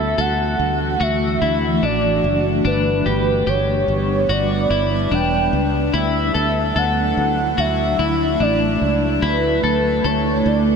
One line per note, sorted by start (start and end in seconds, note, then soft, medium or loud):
0.00 0.14 D2 medium
0.00 2.62 E3 medium
0.00 2.61 A3 medium
0.00 2.62 D4 medium
0.00 2.62 F#4 medium
0.00 0.17 A4 medium
0.00 0.22 E5 medium
0.18 0.55 D2 loud
0.18 1.00 A4 medium
0.18 1.04 F#5 loud
0.60 0.96 D2 loud
1.01 1.37 D2 loud
1.01 1.41 F#4 medium
1.01 1.86 E5 loud
1.42 1.78 D2 loud
1.42 1.83 E4 medium
1.83 2.19 A1 medium
1.83 2.63 D4 medium
1.83 2.46 D5 medium
2.24 2.60 F#1 loud
2.65 3.01 G1 loud
2.65 5.91 G3 medium
2.65 5.91 B3 medium
2.65 3.06 D4 medium
2.65 9.19 D4 medium
2.65 5.91 B4 medium
2.65 3.50 B4 loud
3.06 3.42 G1 loud
3.06 3.46 G4 medium
3.47 3.83 G1 loud
3.47 4.29 G4 medium
3.47 4.33 C#5 loud
3.88 4.24 G1 medium
4.29 4.65 G1 medium
4.29 4.70 F#4 medium
4.29 5.15 D5 loud
4.70 5.07 G1 loud
4.70 5.12 E4 medium
5.11 5.48 E1 loud
5.11 5.94 D4 medium
5.11 5.74 G5 loud
5.53 5.89 C#2 medium
5.94 6.30 D2 loud
5.94 9.19 F#3 medium
5.94 10.76 A3 medium
5.94 6.34 E4 loud
5.94 9.19 E4 medium
5.94 6.79 E5 loud
6.34 6.71 D2 loud
6.34 6.75 A4 medium
6.76 7.12 D2 loud
6.76 7.58 A4 medium
6.76 7.61 F#5 loud
7.17 7.53 D2 medium
7.58 7.94 D2 medium
7.58 7.99 F#4 medium
7.58 8.44 E5 loud
7.99 8.35 D2 medium
7.99 8.40 E4 medium
8.40 8.76 A1 loud
8.40 9.22 D4 medium
8.40 9.03 D5 medium
8.82 9.18 C#2 medium
9.22 9.59 D2 loud
9.22 10.76 E3 medium
9.22 10.76 D4 medium
9.22 9.63 E4 loud
9.22 10.76 E4 medium
9.22 10.07 B4 loud
9.64 10.00 D2 loud
9.64 10.03 A4 medium
10.04 10.41 D2 loud
10.04 10.76 A4 medium
10.04 10.49 C#5 medium
10.46 10.76 D2 loud
10.46 10.76 D5 loud